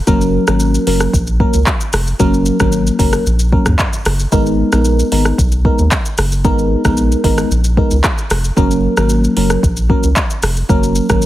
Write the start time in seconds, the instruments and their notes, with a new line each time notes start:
0.07 analog synth bass F#1, fm electric piano F#3 A#3 C#4 A#4, kick, shaker
0.21 shaker
0.47 analog synth bass G#1, fm electric piano F#3 A#3 C#4 A#4, cross-stick, shaker
0.60 shaker
0.75 shaker
0.87 analog synth bass F#1, fm electric piano F#3 A#3 C#4 A#4, open hi-hat
1.00 cross-stick, shaker
1.13 analog synth bass A#1, kick, shaker
1.27 shaker
1.40 fm electric piano F#3 A#3 C#4 A#4, kick
1.54 analog synth bass C#2, shaker
1.66 kick, clap, shaker
1.81 shaker
1.93 analog synth bass F1, cross-stick, open hi-hat, shaker
2.07 shaker
2.19 analog synth bass F#1, fm electric piano F#3 A#3 C#4 A#4, kick, shaker
2.34 shaker
2.46 shaker
2.60 analog synth bass G#1, fm electric piano F#3 A#3 C#4 A#4, kick, cross-stick, shaker
2.72 shaker
2.87 shaker
2.99 analog synth bass F#1, fm electric piano F#3 A#3 C#4 A#4, kick, open hi-hat, shaker
3.13 cross-stick, shaker
3.26 analog synth bass A#1, shaker
3.39 shaker
3.52 fm electric piano F#3 A#3 C#4 A#4, kick
3.66 analog synth bass D#2, cross-stick, mid tom, shaker
3.79 kick, clap, shaker
3.93 shaker
4.05 analog synth bass F#1, cross-stick, open hi-hat, shaker
4.20 shaker
4.32 analog synth bass G#1, fm electric piano G#3 B3 D#4 A#4, kick, shaker
4.46 shaker
4.72 analog synth bass A#1, fm electric piano G#3 B3 D#4 A#4, cross-stick, shaker
4.85 shaker
4.99 shaker
5.12 analog synth bass G#1, fm electric piano G#3 B3 D#4 A#4, open hi-hat
5.25 cross-stick, shaker
5.38 analog synth bass B1, kick, shaker
5.52 shaker
5.65 fm electric piano G#3 B3 D#4 A#4, kick
5.78 analog synth bass D#2, shaker
5.91 kick, clap, shaker
6.05 shaker
6.18 analog synth bass F#1, cross-stick, open hi-hat, shaker
6.32 shaker
6.44 analog synth bass G#1, fm electric piano G#3 B3 D#4 A#4, kick, shaker
6.59 shaker
6.85 analog synth bass A#1, fm electric piano G#3 B3 D#4 A#4, kick, cross-stick, shaker
6.97 shaker
7.12 shaker
7.24 analog synth bass G#1, fm electric piano G#3 B3 D#4 A#4, kick, open hi-hat
7.38 cross-stick, shaker
7.51 analog synth bass A#1, shaker
7.64 shaker
7.77 fm electric piano G#3 B3 D#4 A#4, kick
7.91 analog synth bass C#2, shaker
8.04 kick, cross-stick, clap, shaker
8.18 shaker
8.30 analog synth bass F1, cross-stick, open hi-hat, shaker
8.44 shaker
8.57 analog synth bass F#1, fm electric piano F#3 A#3 C#4 A#4, kick, shaker
8.71 shaker
8.97 analog synth bass G#1, fm electric piano F#3 A#3 C#4 A#4, cross-stick, shaker
9.09 shaker
9.24 shaker
9.36 analog synth bass F#1, fm electric piano F#3 A#3 C#4 A#4, open hi-hat
9.50 cross-stick, shaker
9.63 analog synth bass A#1, kick, shaker
9.77 shaker
9.89 fm electric piano F#3 A#3 C#4 A#4, kick
10.03 analog synth bass C#2, shaker
10.16 kick, clap, shaker
10.30 shaker
10.43 analog synth bass F1, cross-stick, open hi-hat, shaker
10.57 shaker
10.69 analog synth bass F#1, fm electric piano F#3 A#3 C#4 A#4, kick, shaker
10.83 shaker
10.95 shaker
11.09 analog synth bass G#1, fm electric piano F#3 A#3 C#4 A#4, kick, cross-stick, shaker
11.22 shaker